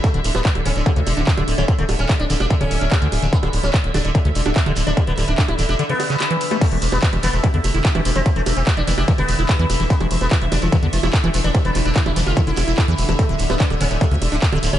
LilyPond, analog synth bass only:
\new Staff \with { instrumentName = "Analog synth bass" } { \clef bass \time 4/4 \key d \dorian \tempo 4 = 146 r16 d,,16 d,,16 d,,16 r16 d,,16 d,,16 d,,16 r16 d,16 e,,16 d,,16 r16 d,,16 d,,16 d,,16 | r16 d,,16 d,,16 d,,16 r16 d,,16 d,,16 e,,16 r16 d,,16 d,,16 d,,16 r16 d,16 d,,16 d,,16 | r16 d,,16 d,,16 d,,16 r16 d,,16 d,,16 d,,16 r16 d,16 e,,16 d,,16 r16 d,,16 d,,16 d,,16 | r16 d,,16 d,,16 d,,16 r16 d,,16 d,,16 e,,16 r2 |
r16 e,,16 e,,16 e,,16 r16 e,,16 e,,16 e,,16 r16 e,16 f,,16 e,,16 r16 e,,16 e,,16 e,,16 | r16 e,,16 e,,16 e,,16 r16 e,,16 e,,16 f,,16 r16 e,,16 e,,16 e,,16 r16 e,16 e,,16 e,,16 | r16 e,,16 e,,16 e,,16 r16 e,,16 e,,16 e,,16 r16 e,16 f,,16 e,,16 r16 e,,16 e,,16 e,,16 | r16 e,,16 e,,16 e,,16 r16 e,,16 e,,16 f,,16 r16 e,,16 e,,16 e,,16 r16 e,16 e,,16 e,,16 |
r16 d,,16 d,,16 d,,16 r16 d,,16 d,,16 d,,16 r16 d,16 e,,16 d,,16 r16 d,,16 d,,16 d,,16 | }